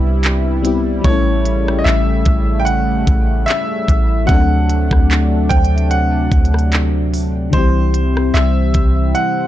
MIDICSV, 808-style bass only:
0, 0, Header, 1, 2, 480
1, 0, Start_track
1, 0, Tempo, 810811
1, 618, Time_signature, 4, 2, 24, 8
1, 5609, End_track
2, 0, Start_track
2, 0, Title_t, "808-style bass"
2, 0, Program_c, 0, 38
2, 0, Note_on_c, 0, 36, 106
2, 594, Note_off_c, 0, 36, 0
2, 618, Note_on_c, 0, 33, 121
2, 1079, Note_off_c, 0, 33, 0
2, 1098, Note_on_c, 0, 33, 112
2, 1328, Note_off_c, 0, 33, 0
2, 1338, Note_on_c, 0, 33, 104
2, 1799, Note_off_c, 0, 33, 0
2, 1820, Note_on_c, 0, 33, 104
2, 2049, Note_off_c, 0, 33, 0
2, 2300, Note_on_c, 0, 33, 106
2, 2530, Note_off_c, 0, 33, 0
2, 2539, Note_on_c, 0, 38, 114
2, 2893, Note_off_c, 0, 38, 0
2, 2908, Note_on_c, 0, 38, 101
2, 3244, Note_off_c, 0, 38, 0
2, 3259, Note_on_c, 0, 38, 104
2, 3719, Note_off_c, 0, 38, 0
2, 3738, Note_on_c, 0, 38, 107
2, 4435, Note_off_c, 0, 38, 0
2, 4458, Note_on_c, 0, 36, 120
2, 4919, Note_off_c, 0, 36, 0
2, 4937, Note_on_c, 0, 36, 104
2, 5168, Note_off_c, 0, 36, 0
2, 5177, Note_on_c, 0, 36, 103
2, 5408, Note_off_c, 0, 36, 0
2, 5609, End_track
0, 0, End_of_file